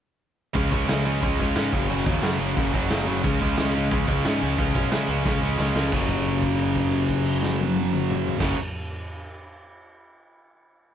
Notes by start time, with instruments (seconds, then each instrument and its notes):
0.54 picked electric bass C#2, distorted electric guitar C#3 G#3 C#4, kick, open hi-hat
0.71 picked electric bass C#2, distorted electric guitar C#3 G#3 C#4, kick
0.88 picked electric bass C#2, distorted electric guitar C#3 G#3 C#4, snare, open hi-hat
1.05 distorted electric guitar C#3 G#3 C#4
1.21 picked electric bass C#2, distorted electric guitar C#3 G#3 C#4, kick, open hi-hat
1.39 picked electric bass C#2, distorted electric guitar C#3 G#3 C#4, kick
1.56 picked electric bass G#2, distorted electric guitar C#3 G#3 C#4, snare, open hi-hat
1.72 picked electric bass F#1, distorted electric guitar F#2 C#3 F#3, kick
1.90 picked electric bass F#1, distorted electric guitar F#2 C#3 F#3, open hi-hat
2.06 picked electric bass D#2, distorted electric guitar F#2 C#3 F#3, kick
2.23 picked electric bass F#2, distorted electric guitar F#2 C#3 F#3, snare, open hi-hat
2.40 picked electric bass F#1, distorted electric guitar F#2 C#3 F#3
2.57 picked electric bass F#1, distorted electric guitar F#2 C#3 F#3, kick, open hi-hat
2.74 picked electric bass F#1, distorted electric guitar F#2 C#3 F#3, kick
2.90 picked electric bass F#1, distorted electric guitar F#2 C#3 F#3, snare, open hi-hat
3.07 picked electric bass F#1, distorted electric guitar F#2 C#3 F#3
3.24 picked electric bass C#2, distorted electric guitar C#3 G#3 C#4, kick, open hi-hat
3.41 picked electric bass C#2, distorted electric guitar C#3 G#3 C#4, kick
3.57 picked electric bass C#2, distorted electric guitar C#3 G#3 C#4, snare, open hi-hat
3.75 distorted electric guitar C#3 G#3 C#4
3.91 picked electric bass C#2, distorted electric guitar C#3 G#3 C#4, kick, open hi-hat
4.08 picked electric bass C#2, distorted electric guitar C#3 G#3 C#4, kick
4.25 picked electric bass G#2, distorted electric guitar C#3 G#3 C#4, snare, open hi-hat
4.42 picked electric bass C#2, distorted electric guitar C#3 G#3 C#4
4.58 picked electric bass C#2, distorted electric guitar C#3 G#3 C#4, kick, open hi-hat
4.75 picked electric bass B1, distorted electric guitar C#3 G#3 C#4, kick
4.92 distorted electric guitar C#3 G#3 C#4, picked electric bass C#3, snare, open hi-hat
5.09 picked electric bass C#2, distorted electric guitar C#3 G#3 C#4
5.25 picked electric bass C#2, distorted electric guitar C#3 G#3 C#4, kick, snare
5.42 picked electric bass C#2, distorted electric guitar C#3 G#3 C#4
5.59 picked electric bass C#2, distorted electric guitar C#3 G#3 C#4, snare
5.75 picked electric bass C#2, distorted electric guitar C#3 G#3 C#4, snare
5.90 picked electric bass F#1, distorted electric guitar F#2 C#3 F#3, kick, crash
6.09 kick, crash
6.26 crash
6.42 kick, crash
6.59 crash
6.75 kick, crash
6.92 crash
7.09 kick, crash
7.26 crash
7.43 snare
7.59 high tom
7.76 high tom
7.93 mid tom
8.10 mid tom
8.27 floor tom
8.39 picked electric bass F#1, distorted electric guitar F#2 C#3 F#3, kick, snare, crash